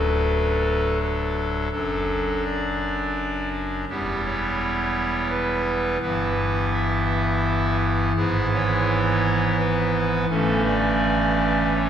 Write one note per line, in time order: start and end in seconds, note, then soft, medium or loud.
0.00 1.68 D1 soft
0.00 1.68 D2 soft
0.00 1.68 F#3 soft
0.00 1.69 D4 soft
0.00 0.98 A4 soft
0.00 0.97 B4 medium
1.00 1.70 A4 medium
1.71 3.85 F#1 soft
1.71 3.85 F#2 soft
1.71 3.85 F#3 soft
1.71 3.85 D4 soft
1.71 2.43 A4 medium
2.44 3.49 D5 medium
3.89 5.97 E1 medium
3.89 5.97 E2 soft
3.89 5.97 G3 soft
3.89 5.97 B3 soft
3.89 5.97 E4 soft
3.89 4.20 G4 medium
4.25 5.27 C#5 loud
5.30 5.99 B4 medium
6.01 8.12 G1 medium
6.01 8.12 G2 medium
6.01 8.12 E3 soft
6.01 8.12 B3 soft
6.01 8.12 E4 soft
6.01 6.72 B4 medium
6.74 7.77 E5 loud
8.16 10.26 G#1 medium
8.16 10.26 G#2 medium
8.16 10.26 E3 soft
8.16 10.26 B3 soft
8.16 10.26 E4 medium
8.16 8.47 G#4 medium
8.53 9.55 C#5 loud
9.58 10.28 B4 medium
10.30 11.89 G1 medium
10.30 11.89 G2 medium
10.30 11.89 E3 medium
10.30 11.89 A3 medium
10.30 11.89 C#4 medium
10.30 10.61 A4 medium
10.66 11.71 D5 loud
11.74 11.89 C#5 medium